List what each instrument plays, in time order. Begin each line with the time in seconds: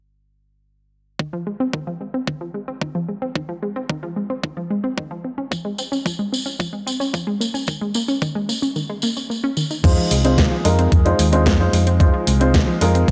1.19 synth arpeggio sound D#3, kick
1.33 synth arpeggio sound F3
1.47 synth arpeggio sound G#3
1.60 synth arpeggio sound C4
1.73 synth arpeggio sound D#3, kick
1.87 synth arpeggio sound F3
2.01 synth arpeggio sound G#3
2.14 synth arpeggio sound C4
2.27 synth arpeggio sound D#3, kick
2.41 synth arpeggio sound F3
2.54 synth arpeggio sound G#3
2.68 synth arpeggio sound C4
2.81 synth arpeggio sound D#3, kick
2.95 synth arpeggio sound F3
3.09 synth arpeggio sound G#3
3.22 synth arpeggio sound C4
3.35 synth arpeggio sound D#3, kick
3.49 synth arpeggio sound F3
3.63 synth arpeggio sound G#3
3.76 synth arpeggio sound C4
3.89 synth arpeggio sound D#3, kick
4.03 synth arpeggio sound F3
4.16 synth arpeggio sound G#3
4.30 synth arpeggio sound C4
4.43 synth arpeggio sound D#3, kick
4.57 synth arpeggio sound F3
4.70 synth arpeggio sound G#3
4.84 synth arpeggio sound C4
4.97 synth arpeggio sound D#3, kick
5.11 synth arpeggio sound F3
5.24 synth arpeggio sound C4
5.38 synth arpeggio sound C#4
5.51 synth arpeggio sound F3, kick, tambourine
5.65 synth arpeggio sound G#3
5.78 synth arpeggio sound C4, tambourine
5.92 synth arpeggio sound C#4, tambourine
6.05 synth arpeggio sound F3, kick, tambourine
6.19 synth arpeggio sound G#3
6.32 synth arpeggio sound C4, tambourine
6.46 synth arpeggio sound C#4, tambourine
6.59 synth arpeggio sound F3, kick, tambourine
6.73 synth arpeggio sound G#3
6.87 synth arpeggio sound C4, tambourine
7.00 synth arpeggio sound C#4, tambourine
7.14 synth arpeggio sound F3, kick, tambourine
7.27 synth arpeggio sound G#3
7.41 synth arpeggio sound A#3, tambourine
7.54 synth arpeggio sound C#4, tambourine
7.67 synth arpeggio sound D#3, kick, tambourine
7.81 synth arpeggio sound G#3
7.94 synth arpeggio sound A#3, tambourine
8.08 synth arpeggio sound C#4, tambourine
8.22 synth arpeggio sound D#3, kick, tambourine
8.35 synth arpeggio sound G#3
8.49 synth arpeggio sound A#3, tambourine
8.62 synth arpeggio sound C#4, tambourine
8.76 synth arpeggio sound D#3, tambourine
8.90 synth arpeggio sound G#3
9.02 synth arpeggio sound A#3, tambourine
9.17 synth arpeggio sound C#4, tambourine
9.30 synth arpeggio sound A#3, tambourine
9.44 synth arpeggio sound C#4
9.57 synth arpeggio sound D#3, tambourine
9.71 synth arpeggio sound D#4, tambourine
9.84 fingered electric bass F2, synth arpeggio sound D#3, grand piano G#3 D#4 F4 C5, kick, closed hi-hat, crash
9.98 synth arpeggio sound F3
10.11 fingered electric bass C2, synth arpeggio sound G#3, open hi-hat
10.24 grand piano G#3 D#4 F4 C5, synth arpeggio sound C4, closed hi-hat
10.38 synth arpeggio sound D#3, kick, snare, closed hi-hat
10.51 synth arpeggio sound F3
10.64 fingered electric bass F2, grand piano G#3 D#4 F4 A#4, synth arpeggio sound G#3, open hi-hat
10.79 synth arpeggio sound C4, closed hi-hat
10.92 fingered electric bass F2, synth arpeggio sound D#3, kick, closed hi-hat
11.05 synth arpeggio sound F3, grand piano G#3 D#4 F4 C5, closed hi-hat
11.19 fingered electric bass D#2, synth arpeggio sound G#3, open hi-hat
11.32 grand piano G#3 D#4 F4 C5, synth arpeggio sound C4, closed hi-hat
11.46 fingered electric bass F2, synth arpeggio sound D#3, kick, snare, closed hi-hat
11.59 synth arpeggio sound F3, grand piano G#3 D#4 F4 C5
11.73 fingered electric bass F2, synth arpeggio sound G#3, open hi-hat
11.87 synth arpeggio sound C4, closed hi-hat
12.00 synth arpeggio sound D#3, grand piano G#3 D#4 F4 C5, kick, closed hi-hat
12.14 synth arpeggio sound F3
12.27 fingered electric bass C2, synth arpeggio sound G#3, open hi-hat
12.40 grand piano G#3 D#4 F4 C5, synth arpeggio sound C4, closed hi-hat
12.54 synth arpeggio sound D#3, kick, snare, closed hi-hat
12.68 synth arpeggio sound F3
12.81 fingered electric bass F2, grand piano G#3 D#4 F4 A#4, synth arpeggio sound G#3, open hi-hat
12.95 synth arpeggio sound C4, closed hi-hat
13.08 synth arpeggio sound D#3, kick